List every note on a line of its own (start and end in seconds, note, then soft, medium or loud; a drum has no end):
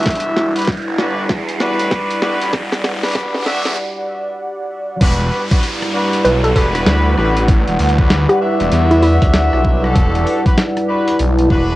0.00 4.97 G3 medium
0.00 0.51 D4 medium
0.00 3.77 E4 medium
0.00 0.51 F#4 medium
0.00 0.51 G4 medium
0.00 3.77 B4 medium
0.00 4.97 D5 medium
0.00 0.51 E5 loud
0.00 3.77 F#5 medium
0.00 4.97 F#5 medium
0.00 closed hi-hat soft
0.00 riser medium
0.06 0.53 E1 medium
0.06 kick medium
0.06 snare medium
0.06 closed hi-hat soft
0.10 closed hi-hat medium
0.15 closed hi-hat medium
0.20 closed hi-hat medium
0.37 snare medium
0.56 0.69 D4 medium
0.56 0.69 F#4 medium
0.56 0.69 G4 medium
0.56 0.69 B4 medium
0.56 closed hi-hat medium
0.59 closed hi-hat soft
0.62 closed hi-hat soft
0.65 snare medium
0.65 closed hi-hat soft
0.67 kick medium
0.67 closed hi-hat soft
0.72 closed hi-hat soft
0.77 closed hi-hat soft
0.82 closed hi-hat soft
0.87 1.28 G1 medium
0.98 1.26 D4 medium
0.98 1.26 F#4 medium
0.98 1.26 G4 medium
0.98 1.26 B4 medium
0.98 snare medium
1.29 1.77 E2 loud
1.29 kick loud
1.29 snare medium
1.49 closed hi-hat medium
1.60 2.20 D4 loud
1.60 2.20 F#4 medium
1.60 2.20 G4 medium
1.60 2.19 B4 loud
1.60 snare medium
1.80 1.90 A1 loud
1.80 closed hi-hat medium
1.91 kick loud
1.91 snare medium
2.11 closed hi-hat medium
2.22 2.39 E1 loud
2.22 2.50 D4 medium
2.22 2.50 F#4 medium
2.22 2.50 G4 medium
2.22 2.50 B4 loud
2.22 snare medium
2.42 2.52 A1 loud
2.42 closed hi-hat medium
2.53 3.00 E1 loud
2.53 kick loud
2.53 snare medium
2.73 snare medium
2.84 snare medium
3.03 3.62 E1 medium
3.03 3.43 D4 medium
3.03 3.43 F#4 medium
3.03 3.43 G4 medium
3.03 3.43 B4 medium
3.03 snare medium
3.03 closed hi-hat soft
3.05 closed hi-hat soft
3.07 closed hi-hat soft
3.08 closed hi-hat soft
3.10 closed hi-hat soft
3.12 closed hi-hat medium
3.13 kick loud
3.13 snare medium
3.13 closed hi-hat medium
3.34 snare medium
3.46 3.77 D4 medium
3.46 3.77 F#4 medium
3.46 3.77 G4 medium
3.46 3.77 E5 loud
3.46 snare loud
3.65 3.77 E2 loud
3.65 snare medium
3.65 closed hi-hat medium
5.01 5.30 E1 loud
5.01 11.76 G3 medium
5.01 5.43 D4 loud
5.01 11.76 E4 medium
5.01 5.43 F#4 loud
5.01 5.43 G4 loud
5.01 5.43 B4 loud
5.01 11.76 D5 medium
5.01 11.76 F#5 medium
5.01 kick loud
5.01 closed hi-hat medium
5.01 crash loud
5.01 downlifter medium
5.20 closed hi-hat soft
5.32 11.76 B4 medium
5.32 open hi-hat medium
5.51 5.64 D4 medium
5.51 5.64 F#4 medium
5.51 5.64 G4 medium
5.51 5.64 B4 medium
5.51 kick loud
5.51 closed hi-hat medium
5.63 closed hi-hat medium
5.82 cross-stick soft
5.82 closed hi-hat soft
5.92 6.21 D4 medium
5.92 6.21 F#4 medium
5.92 6.21 G4 medium
5.92 6.21 B4 medium
5.92 10.89 F#5 medium
6.13 closed hi-hat medium
6.24 6.54 B1 loud
6.24 6.40 B4 loud
6.24 closed hi-hat medium
6.44 6.51 A4 medium
6.44 closed hi-hat soft
6.55 6.85 E1 medium
6.55 7.14 D4 loud
6.55 7.14 F#4 medium
6.55 7.14 G4 medium
6.55 6.68 A4 medium
6.55 7.14 B4 loud
6.55 kick medium
6.55 open hi-hat medium
6.75 cross-stick soft
6.75 closed hi-hat medium
6.86 7.15 D2 loud
6.86 snare loud
6.86 closed hi-hat medium
7.17 7.64 A1 loud
7.17 7.45 D4 medium
7.17 7.45 F#4 medium
7.17 7.45 G4 medium
7.17 7.45 B4 loud
7.17 cross-stick soft
7.37 closed hi-hat medium
7.48 kick loud
7.48 closed hi-hat medium
7.68 7.77 E1 loud
7.68 closed hi-hat soft
7.79 8.26 D2 loud
7.79 open hi-hat medium
7.89 closed hi-hat medium
7.98 8.38 D4 medium
7.98 8.38 F#4 medium
7.98 8.38 G4 medium
7.98 8.38 B4 medium
7.98 kick loud
8.10 snare loud
8.10 closed hi-hat medium
8.29 8.42 G4 medium
8.29 cross-stick soft
8.29 closed hi-hat soft
8.41 9.80 D4 loud
8.41 9.80 F#4 medium
8.41 9.80 G4 medium
8.41 9.80 E5 loud
8.60 8.70 E1 loud
8.60 closed hi-hat medium
8.72 9.19 E2 loud
8.72 closed hi-hat medium
8.91 8.99 E4 medium
8.91 closed hi-hat soft
9.03 9.15 E4 medium
9.03 open hi-hat medium
9.22 9.50 D2 medium
9.22 kick loud
9.22 closed hi-hat medium
9.34 snare loud
9.34 closed hi-hat medium
9.53 9.94 B1 loud
9.53 cross-stick soft
9.65 kick medium
9.84 10.41 D4 medium
9.84 10.41 F#4 medium
9.84 10.41 G4 medium
9.84 10.41 A4 loud
9.84 cross-stick soft
9.96 10.25 E1 medium
9.96 kick loud
9.96 closed hi-hat medium
10.15 closed hi-hat soft
10.27 open hi-hat medium
10.45 10.59 D4 medium
10.45 10.59 F#4 medium
10.45 10.59 G4 medium
10.45 10.59 B4 medium
10.45 kick loud
10.45 closed hi-hat medium
10.58 snare loud
10.58 closed hi-hat medium
10.77 cross-stick soft
10.77 closed hi-hat soft
10.87 11.16 D4 medium
10.87 11.16 F#4 medium
10.87 11.16 G4 medium
10.87 11.16 B4 medium
10.87 11.76 A5 medium
11.08 closed hi-hat medium
11.19 11.48 B1 loud
11.19 closed hi-hat medium
11.38 closed hi-hat soft
11.50 11.76 E1 loud
11.50 11.76 D4 loud
11.50 11.76 F#4 medium
11.50 11.76 G4 medium
11.50 11.76 B4 loud
11.50 kick medium